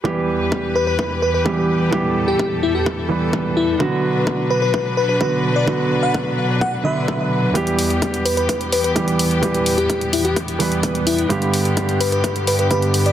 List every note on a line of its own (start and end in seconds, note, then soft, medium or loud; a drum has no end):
0.04 3.76 E2 medium
0.04 1.42 E3 medium
0.04 3.76 E3 medium
0.04 1.43 G3 medium
0.04 1.43 B3 medium
0.04 3.76 G4 medium
0.04 1.43 G4 medium
0.04 1.91 B4 medium
0.04 kick loud
0.52 kick loud
0.75 0.85 B4 medium
0.87 1.20 B4 medium
0.99 kick loud
1.22 1.30 B4 medium
1.34 1.42 B4 medium
1.45 1.89 E3 medium
1.45 1.90 G3 medium
1.45 1.90 B3 medium
1.45 1.90 G4 medium
1.45 kick loud
1.91 3.06 E3 medium
1.91 3.07 G3 medium
1.91 3.07 B3 medium
1.91 3.08 G4 medium
1.91 3.78 A4 medium
1.91 kick loud
2.28 2.61 G4 medium
2.39 kick loud
2.63 2.72 E4 medium
2.75 2.87 G4 medium
2.86 kick loud
3.09 3.77 E3 medium
3.09 3.77 G3 medium
3.09 3.77 B3 medium
3.09 3.78 B4 medium
3.33 kick loud
3.57 3.85 E4 medium
3.79 7.51 B2 medium
3.79 5.17 D3 medium
3.79 5.18 F#3 medium
3.79 7.51 F#3 medium
3.79 5.18 B3 medium
3.79 7.51 D4 medium
3.79 5.19 F#4 loud
3.79 7.51 B4 medium
3.79 kick loud
4.27 kick loud
4.50 4.60 B4 medium
4.62 4.95 B4 medium
4.74 kick loud
4.97 5.05 B4 medium
5.09 5.17 B4 medium
5.20 5.65 D3 medium
5.20 5.65 F#3 medium
5.20 5.65 B3 medium
5.20 5.65 F#4 medium
5.20 5.54 B4 medium
5.20 kick loud
5.56 5.68 D5 medium
5.66 6.81 D3 medium
5.66 6.82 F#3 medium
5.66 6.82 B3 medium
5.66 6.83 F#4 medium
5.66 kick loud
6.03 6.15 F#5 medium
6.14 kick loud
6.61 6.73 F#5 medium
6.61 kick loud
6.84 7.52 D3 medium
6.84 7.52 F#3 medium
6.84 7.52 B3 medium
6.84 7.53 B4 medium
6.84 7.20 E5 medium
7.08 kick loud
7.54 11.26 E2 medium
7.54 8.92 E3 medium
7.54 11.26 E3 medium
7.54 8.93 G3 medium
7.54 13.12 B3 medium
7.54 8.93 B3 medium
7.54 11.26 G4 medium
7.54 8.94 G4 loud
7.54 kick loud
7.54 closed hi-hat medium
7.67 closed hi-hat soft
7.79 open hi-hat medium
7.90 closed hi-hat soft
8.02 kick loud
8.02 closed hi-hat medium
8.14 closed hi-hat soft
8.25 8.35 B4 medium
8.25 open hi-hat loud
8.37 8.70 B4 medium
8.37 closed hi-hat soft
8.49 kick loud
8.49 closed hi-hat medium
8.61 closed hi-hat soft
8.72 8.80 B4 medium
8.72 open hi-hat loud
8.84 8.92 B4 medium
8.84 closed hi-hat soft
8.95 9.40 E3 medium
8.95 9.40 G3 medium
8.95 9.40 B3 medium
8.95 9.40 G4 medium
8.95 kick loud
8.95 closed hi-hat medium
9.08 closed hi-hat soft
9.19 open hi-hat loud
9.31 closed hi-hat soft
9.42 10.56 E3 medium
9.42 10.57 G3 medium
9.42 10.57 B3 medium
9.42 10.58 G4 medium
9.42 kick loud
9.42 closed hi-hat medium
9.54 closed hi-hat soft
9.66 open hi-hat loud
9.78 10.11 G4 medium
9.78 closed hi-hat soft
9.90 kick loud
9.90 closed hi-hat medium
10.01 closed hi-hat soft
10.13 10.22 E4 medium
10.13 open hi-hat loud
10.25 10.37 G4 medium
10.25 closed hi-hat soft
10.36 kick loud
10.36 closed hi-hat medium
10.48 closed hi-hat soft
10.59 11.27 E3 medium
10.59 11.27 G3 medium
10.59 11.28 B3 medium
10.59 11.28 B4 medium
10.59 open hi-hat medium
10.72 closed hi-hat soft
10.83 kick loud
10.83 closed hi-hat medium
10.95 closed hi-hat soft
11.07 11.35 E4 medium
11.07 open hi-hat loud
11.19 closed hi-hat soft
11.29 12.67 G2 medium
11.29 13.12 G2 medium
11.29 12.68 D3 medium
11.29 13.12 D3 medium
11.29 12.68 G3 medium
11.29 12.68 B3 medium
11.29 13.12 G4 medium
11.29 12.69 G4 loud
11.29 kick loud
11.29 closed hi-hat medium
11.42 closed hi-hat soft
11.54 open hi-hat medium
11.65 closed hi-hat soft
11.77 kick loud
11.77 closed hi-hat medium
11.89 closed hi-hat soft
12.00 12.10 B4 medium
12.00 open hi-hat loud
12.12 12.45 B4 medium
12.12 closed hi-hat soft
12.24 kick loud
12.24 closed hi-hat medium
12.36 closed hi-hat soft
12.47 12.55 B4 medium
12.47 open hi-hat medium
12.59 12.67 B4 medium
12.59 closed hi-hat soft
12.70 13.12 G2 medium
12.70 13.12 D3 medium
12.70 13.12 G3 medium
12.70 13.12 B3 medium
12.70 13.12 G4 medium
12.70 13.04 B4 medium
12.70 kick loud
12.70 closed hi-hat medium
12.82 closed hi-hat soft
12.94 open hi-hat medium
13.06 13.12 D5 medium
13.06 closed hi-hat soft